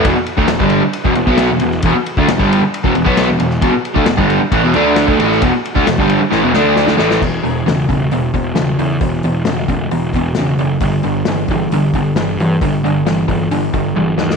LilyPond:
<<
  \new Staff \with { instrumentName = "Overdriven electric guitar" } { \clef bass \time 4/4 \key e \dorian \tempo 4 = 134 <e, b,>16 r8 <d a>16 <e, b,>16 <g, d g>8 r8 <e, b,>16 <e, b,>16 <b, fis b>8 <e, b,>16 <e, b,>8 | <e, b,>16 r8 <d a>16 <e, b,>16 <g, d g>8 r8 <e, b,>16 <e, b,>16 <b, fis b>8 <e, b,>16 <e, b,>8 | <e, b,>16 r8 <d a>16 <e, b,>16 <g, d g>8 r16 <a, e>16 <e, b,>16 <d a d'>8. <d a>16 <a, e a>8 | <e, b,>16 r8 <d a>16 <e, b,>16 <g, d g>8 r16 <a, e>16 <e, b,>16 <d a d'>8. <d a>16 <a, e a>8 |
<e, b,>8 <e, b,>8 <e, cis>8 <e, cis>8 <e, b,>8 <e, b,>8 <e, cis>8 <e, cis>8 | <e, b,>8 <e, b,>8 <e, cis>8 <e, cis>8 <e, b,>8 <e, b,>8 <e, cis>8 <e, cis>8 | <g, d>8 <g, d>8 <g, e>8 <g, e>8 <g, d>8 <g, d>8 <g, e>8 <g, e>8 | <g, d>8 <g, d>8 <g, e>8 <g, e>8 <g, d>8 <g, d>8 <g, e>8 <g, e>8 | }
  \new Staff \with { instrumentName = "Picked electric bass" } { \clef bass \time 4/4 \key e \dorian e,,16 r8 d,16 e,,16 g,,8 r8 e,,16 e,,16 b,,8 e,,16 e,,8 | e,,16 r8 d,16 e,,16 g,,8 r8 e,,16 e,,16 b,,8 e,,16 e,,8 | e,,16 r8 d,16 e,,16 g,,8 r16 a,,16 e,,16 d,8. d,16 a,,8 | e,,16 r8 d,16 e,,16 g,,8 r16 a,,16 e,,16 d,8. d,16 a,,8 |
e,,8 e,,8 e,,8 e,,8 e,,8 e,,8 e,,8 e,8 | e,,8 e,,8 e,,8 e,,8 e,,8 e,,8 e,,8 fis,,8 | g,,8 g,,8 g,,8 g,,8 g,,8 g,,8 g,,8 g,8 | g,,8 g,,8 g,,8 g,,8 g,,8 g,,8 g,,8 dis,8 | }
  \new DrumStaff \with { instrumentName = "Drums" } \drummode { \time 4/4 <bd cymr>8 cymr16 bd16 <cymr sn>16 bd16 cymr8 cymr16 bd16 cymr16 bd16 <cymr sn>8 cymr16 sn16 | <bd cymr>8 cymr16 bd16 <cymr sn>16 bd16 cymr8 cymr16 bd16 cymr16 bd16 <cymr sn>8 cymr16 sn16 | <bd cymr>8 cymr16 bd16 <cymr sn>16 bd16 cymr8 <bd cymr>8 cymr8 <cymr sn>16 bd16 cymr16 sn16 | <bd cymr>8 cymr16 bd16 <cymr sn>16 bd16 cymr8 sn8 sn8 sn16 sn16 sn16 sn16 |
<cymc bd>8 hho8 <hho sn>8 <hho bd>8 hho8 <hho bd>8 <hho sn>8 hho8 | <hho bd>8 hho8 <hho sn>8 <hho bd>8 hho8 <hho bd>8 <hho sn>8 hho8 | <hho bd>8 hho8 <hho sn>8 <hho bd>8 hho8 <hho bd>8 <hho sn>8 hho8 | <hho bd>8 hho8 <hho sn>8 <hho bd>8 hho8 <hho bd>8 tommh8 sn16 sn16 | }
>>